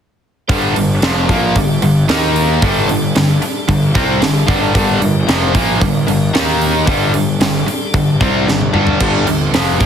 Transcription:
0.48 picked electric bass G1, distorted electric guitar G2 D3 G3, tonewheel organ G3 D4 A4, kick, open hi-hat
0.75 picked electric bass G1, distorted electric guitar G2 D3, open hi-hat
1.02 picked electric bass F1, distorted electric guitar F2 C3 F3, snare, open hi-hat
1.29 picked electric bass A#1, distorted electric guitar A#2 F3 A#3, kick, open hi-hat
1.55 picked electric bass G1, distorted electric guitar G2 D3, kick, open hi-hat
1.82 picked electric bass G1, distorted electric guitar G2 D3, open hi-hat
2.08 picked electric bass D#2, distorted electric guitar D#3 A#3 D#4, tonewheel organ D#4 A#4 F5, snare, open hi-hat
2.36 open hi-hat
2.62 picked electric bass G1, distorted electric guitar G2 D3 G3, tonewheel organ G3 D4 A4, kick, open hi-hat
2.89 picked electric bass G1, distorted electric guitar G2 D3, open hi-hat
3.16 picked electric bass G1, distorted electric guitar G2 D3, snare, open hi-hat
3.42 muted overdriven electric guitar stroke, muted picked electric bass stroke, muted distorted electric guitar stroke, open hi-hat
3.69 picked electric bass G1, distorted electric guitar G2 D3, kick, open hi-hat
3.95 picked electric bass C2, distorted electric guitar C3 G3 C4, kick, open hi-hat
4.20 picked electric bass G1, distorted electric guitar G2 D3, snare, open hi-hat
4.47 picked electric bass G1, distorted electric guitar G2 D3 G3, kick, open hi-hat
4.73 picked electric bass G1, distorted electric guitar G2 D3 G3, tonewheel organ A#4, kick, open hi-hat
5.01 picked electric bass G1, distorted electric guitar G2 D3, open hi-hat
5.27 picked electric bass F1, distorted electric guitar F2 C3 F3, snare, open hi-hat
5.53 picked electric bass A#1, distorted electric guitar A#2 F3 A#3, kick, open hi-hat
5.81 picked electric bass G1, distorted electric guitar G2 D3, kick, open hi-hat
6.07 picked electric bass G1, distorted electric guitar G2 D3, open hi-hat
6.33 picked electric bass D#2, distorted electric guitar D#3 A#3 D#4, tonewheel organ D#4 F5, snare, open hi-hat
6.62 open hi-hat
6.86 picked electric bass G1, distorted electric guitar G2 D3 G3, tonewheel organ G3 D4 A4, kick, open hi-hat
7.13 picked electric bass G1, distorted electric guitar G2 D3, open hi-hat
7.40 picked electric bass G1, distorted electric guitar G2 D3, snare, open hi-hat
7.66 muted overdriven electric guitar stroke, muted picked electric bass stroke, muted distorted electric guitar stroke, open hi-hat
7.94 picked electric bass G1, distorted electric guitar G2 D3, kick, open hi-hat
8.20 picked electric bass C2, distorted electric guitar C3 G3 C4, kick, open hi-hat
8.47 picked electric bass G1, distorted electric guitar G2 D3, snare
8.61 high tom
8.73 picked electric bass G1, distorted electric guitar G2 D3 G3, mid tom
8.87 floor tom
9.00 picked electric bass G1, distorted electric guitar G2 D3 G3, tonewheel organ C4, kick, crash
9.27 picked electric bass G1, distorted electric guitar G2 D3, open hi-hat
9.54 picked electric bass F1, distorted electric guitar F2 C3 F3, snare, open hi-hat
9.80 picked electric bass A#1, distorted electric guitar A#2 F3 A#3, kick, open hi-hat

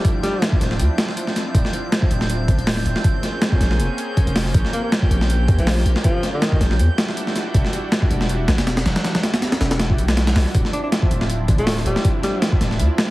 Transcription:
Already playing: analog synth pad F3 C4 D4 E4, synth texture G6
0.05 kick, closed hi-hat
0.23 tenor saxophone G3, snare, closed hi-hat
0.42 snare, closed hi-hat
0.52 kick
0.61 808-style bass D1, snare, closed hi-hat
0.71 snare
0.79 808-style bass D2, closed hi-hat
0.98 snare, closed hi-hat
1.09 snare
1.17 closed hi-hat
1.27 snare
1.36 snare, closed hi-hat
1.55 808-style bass D1, kick, closed hi-hat
1.65 snare
1.73 closed hi-hat
1.92 snare, closed hi-hat
2.02 kick
2.11 808-style bass D1, closed hi-hat
2.21 snare
2.30 closed hi-hat
2.48 808-style bass G1, kick, closed hi-hat
2.58 808-style bass D1, closed hi-hat
2.67 snare, open hi-hat
2.77 snare
2.86 808-style bass D1, closed hi-hat
2.96 snare
3.04 analog synth pad A#3 C#4 G#4, kick, closed hi-hat
3.23 snare, closed hi-hat
3.42 snare, closed hi-hat
3.52 kick
3.60 808-style bass A#1, snare, closed hi-hat
3.71 snare
3.79 808-style bass F1, closed hi-hat
3.98 closed hi-hat
4.17 kick, closed hi-hat
4.27 808-style bass F1, closed hi-hat
4.36 snare, open hi-hat
4.46 snare
4.54 808-style bass A#1, analog synth pad G4, kick, closed hi-hat
4.65 snare
4.73 tenor saxophone A#3, closed hi-hat
4.83 tenor saxophone A#3
4.92 snare, closed hi-hat
5.02 kick
5.10 808-style bass A#1, closed hi-hat
5.21 snare
5.30 closed hi-hat
5.48 808-style bass D#2, kick, closed hi-hat
5.58 808-style bass A#1, tenor saxophone F3, closed hi-hat
5.67 snare, open hi-hat
5.77 snare
5.85 808-style bass A#1, closed hi-hat
5.96 snare
6.04 tenor saxophone F3, kick, closed hi-hat
6.23 snare, closed hi-hat
6.34 tenor saxophone D#3
6.42 snare, closed hi-hat
6.52 kick
6.61 808-style bass A#1, snare, closed hi-hat
6.71 snare
6.79 808-style bass E2, analog synth pad G3 D4 E4 F#4, closed hi-hat
6.98 snare, closed hi-hat
7.08 snare
7.17 closed hi-hat
7.27 snare
7.36 snare, closed hi-hat
7.54 808-style bass E1, kick, closed hi-hat
7.65 snare
7.73 closed hi-hat
7.92 snare, closed hi-hat
8.02 kick
8.11 808-style bass E1, closed hi-hat
8.21 snare
8.29 closed hi-hat
8.48 808-style bass A1, snare, closed hi-hat
8.58 808-style bass E1, snare, closed hi-hat
8.67 snare, closed hi-hat
8.77 snare, closed hi-hat
8.86 808-style bass E1, snare, closed hi-hat
8.96 snare, closed hi-hat
9.04 snare, closed hi-hat
9.15 snare, closed hi-hat
9.23 snare, closed hi-hat
9.34 snare, closed hi-hat
9.42 snare, closed hi-hat
9.52 snare, closed hi-hat
9.61 808-style bass E1, snare, closed hi-hat
9.71 snare, closed hi-hat
9.80 snare, closed hi-hat
9.90 kick
9.98 808-style bass B1, closed hi-hat
10.08 snare, closed hi-hat
10.17 snare, closed hi-hat
10.27 snare, closed hi-hat
10.36 808-style bass B1, snare, open hi-hat
10.46 snare
10.54 808-style bass D1, analog synth pad F3 C4 D4 E4, kick, closed hi-hat
10.65 snare
10.73 tenor saxophone D4, closed hi-hat
10.83 tenor saxophone D4
10.92 snare, closed hi-hat
11.02 kick
11.11 808-style bass D1, closed hi-hat
11.21 snare
11.30 closed hi-hat
11.48 808-style bass G1, kick, closed hi-hat
11.58 808-style bass D1, tenor saxophone A3, closed hi-hat
11.67 snare, open hi-hat
11.77 snare
11.86 808-style bass D1, tenor saxophone G3, closed hi-hat
11.96 snare
12.05 kick, closed hi-hat
12.23 tenor saxophone G3, snare, closed hi-hat
12.42 snare, closed hi-hat
12.52 kick
12.61 808-style bass D1, snare, closed hi-hat
12.71 snare
12.79 808-style bass D2, closed hi-hat
12.98 snare, closed hi-hat

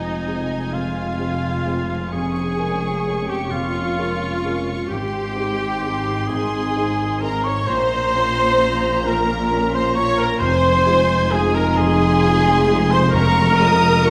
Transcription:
Already playing: grand piano F1 F2 G#3 C4 F4, double bass section F1, cello section F2, french horn section G#3 C4, viola section D#4, oboe D#4, violin section D#5 G#5, flute D#5
0.27 grand piano G#3 C4 F4
0.73 grand piano F1 F2, viola section F4, oboe F4, flute F5, violin section F5
1.19 grand piano G#3 C4 F4
1.67 grand piano G#3 C4 F4
2.11 grand piano F1 F2, french horn section A#3 C#4, oboe G#4, viola section G#4, violin section G#5 C#6, flute G#5
2.58 grand piano G#3 C#4 A#4
3.06 grand piano G#3 C#4 A#4
3.27 oboe G4, viola section G4, violin section G5, flute G5
3.50 grand piano F1 F2, oboe F4, viola section F4, violin section F5, flute F5
3.98 grand piano G#3 C#4 A#4
4.44 grand piano G#3 C#4 A#4
4.88 grand piano G#1 G#2, cello section G#2, french horn section C4 D#4, oboe G4, viola section G4, flute G5, violin section G5 C6
4.92 double bass section G#1
5.36 grand piano G#3 C4 D#4
5.82 grand piano G#3 C4 D#4
6.27 grand piano G#1 G#2, oboe G#4, viola section G#4, violin section G#5, flute G#5
6.76 grand piano C4 D#4 G#4
7.21 grand piano C4 D#4 G#4, oboe A#4, viola section A#4, flute A#5, violin section A#5
7.44 oboe C#5, viola section C#5, flute C#6, violin section C#6
7.65 double bass section A#1, grand piano A#1 A#2, cello section A#2, french horn section C#4 F4, oboe C5, viola section C5, violin section A#5 C6, flute C6
8.15 grand piano A#3 C#4 F4
8.60 grand piano A#3 C#4
9.04 grand piano A#1 A#2, viola section A#4, oboe A#4, flute A#5, violin section A#5
9.51 grand piano A#3 C#4 F4
9.71 viola section C5, oboe C5, violin section C6, flute C6
9.95 grand piano A#3 C#4 F4, oboe C#5, viola section C#5, flute C#6, violin section C#6
10.17 oboe A#4, viola section A#4, flute A#5, violin section A#5
10.39 double bass section F1, grand piano F1 F2, timpani F2, cello section F2, french horn section G#3 D#4, oboe C5, viola section C5, violin section G#5 C6, flute C6
10.86 grand piano G#3 D#4 F4
11.31 grand piano G#3 D#4 F4, oboe G#4, viola section G#4, violin section G#5, flute G#5
11.54 oboe A#4, viola section A#4, violin section A#5, flute A#5
11.75 grand piano F1 F2, oboe G#4, viola section G#4, violin section G#5 C6, flute G#5
12.22 grand piano G#3 D#4 F4
12.67 grand piano G#3 D#4 F4
12.91 oboe C5, viola section C5, violin section C6, flute C6
13.13 grand piano F1 F2, timpani F2, french horn section C#4, viola section A#4, oboe A#4, flute A#5, violin section A#5 C#6
13.58 grand piano G#3 C#4 F4, violin section D#6
14.04 grand piano G#3 C#4 F4, violin section C#6

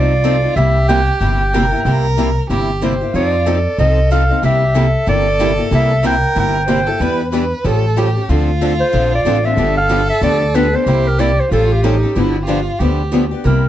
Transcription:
Already playing: upright bass C2, steel-string acoustic guitar F3 C4 D#4 A4, violin F4, clarinet D5
0.24 steel-string acoustic guitar F3 C4 D#4 A4
0.42 steel-string acoustic guitar C4 D#4 A4
0.56 upright bass C2, steel-string acoustic guitar C3 G3 A#3 E4 G4, violin G4, clarinet E5
0.88 steel-string acoustic guitar C3 G3 A#3 E4 G4, clarinet G5
1.21 upright bass G1, steel-string acoustic guitar C3 G3 A#3 E4 G4, clarinet G5
1.53 steel-string acoustic guitar C3 G3 A#3 E4 G4, violin A#4
1.71 steel-string acoustic guitar A#3 E4 G4
1.85 upright bass C2, steel-string acoustic guitar C3 G3 A#3 E4 G4, violin A#4
2.17 steel-string acoustic guitar C3 G3 A#3 E4 G4
2.50 upright bass G1, steel-string acoustic guitar C3 G3 A#3 E4 G4, violin G4
2.82 steel-string acoustic guitar C3 G3 A#3 E4 G4, clarinet C5
3.01 steel-string acoustic guitar A#3 E4 G4
3.13 upright bass F2, steel-string acoustic guitar F3 C4 D#4 A4, violin F4, clarinet D5
3.46 steel-string acoustic guitar F3 C4 D#4 A4, violin A4
3.78 upright bass C2, steel-string acoustic guitar F3 C4 D#4 A4, clarinet D#5
4.11 steel-string acoustic guitar F3 C4 D#4 A4, clarinet F5
4.29 steel-string acoustic guitar C4 D#4 A4
4.43 upright bass C2, steel-string acoustic guitar C3 G3 A#3 E4 G4, violin G4, clarinet E5
4.75 steel-string acoustic guitar C3 G3 A#3 E4 G4, violin A4
5.07 upright bass G1, steel-string acoustic guitar C3 G3 A#3 E4 G4, clarinet D5
5.40 steel-string acoustic guitar C3 G3 A#3 E4 G4
5.58 steel-string acoustic guitar A#3 E4 G4
5.71 upright bass C2, steel-string acoustic guitar C3 G3 A#3 E4 G4, clarinet E5
6.04 steel-string acoustic guitar C3 G3 A#3 E4 G4, violin A#4, clarinet G5
6.36 upright bass G1, steel-string acoustic guitar C3 G3 A#3 E4 G4, clarinet G5
6.68 steel-string acoustic guitar C3 G3 A#3 E4 G4, violin C5
6.87 steel-string acoustic guitar A#3 E4 G4, violin A4
7.00 upright bass E2, steel-string acoustic guitar E3 G3 B3 D4 E4 G4 B4, violin B4
7.32 steel-string acoustic guitar E3 G3 B3 D4 E4 G4 B4, violin B4
7.64 upright bass A1, steel-string acoustic guitar F3 G3 C#4 G4 A4, violin A4
7.96 steel-string acoustic guitar F3 G3 C#4 G4 A4, violin G4
8.15 steel-string acoustic guitar C#4 G4 A4
8.29 upright bass D2, steel-string acoustic guitar D3 F3 C4 D4 A4, violin F4
8.61 steel-string acoustic guitar D3 F3 C4 D4 A4
8.80 clarinet C5
8.92 upright bass A#1, steel-string acoustic guitar D3 F3 C4 D4 A4
9.15 clarinet D5
9.25 upright bass A1, steel-string acoustic guitar D3 F3 C4 D4 A4
9.44 steel-string acoustic guitar C4 D4 A4, clarinet E5
9.57 upright bass G1, steel-string acoustic guitar D3 F3 B3 D4 G4, violin A4
9.78 clarinet F5
9.90 steel-string acoustic guitar D3 F3 B3 D4 G4
10.09 clarinet E5
10.22 upright bass D2, steel-string acoustic guitar D3 F3 B3 D4 G4, clarinet D5
10.54 steel-string acoustic guitar D3 F3 B3 D4 G4, clarinet B4
10.73 steel-string acoustic guitar B3 D4 G4, clarinet C5
10.86 upright bass C2, steel-string acoustic guitar C3 G3 A#3 E4 G4, violin G4
11.08 clarinet A#4
11.18 steel-string acoustic guitar C3 G3 A#3 E4 G4, clarinet D5
11.40 clarinet C5
11.51 upright bass A1, steel-string acoustic guitar F3 G3 C#4 G4 A4, violin F4, clarinet A4
11.72 clarinet G4
11.84 steel-string acoustic guitar F3 G3 C#4 G4 A4, violin D#4
12.03 steel-string acoustic guitar C#4 G4 A4
12.16 upright bass G1, steel-string acoustic guitar D3 F3 B3 D4 G4, violin E4
12.43 violin F4 G4
12.48 steel-string acoustic guitar D3 F3 B3 D4 G4
12.79 upright bass D2, steel-string acoustic guitar D3 F3 B3 D4 G4, violin G4
13.13 steel-string acoustic guitar D3 F3 B3 D4 G4
13.31 steel-string acoustic guitar B3 D4 G4
13.45 upright bass C2, steel-string acoustic guitar C3 G3 A#3 E4 G4, clarinet A#4

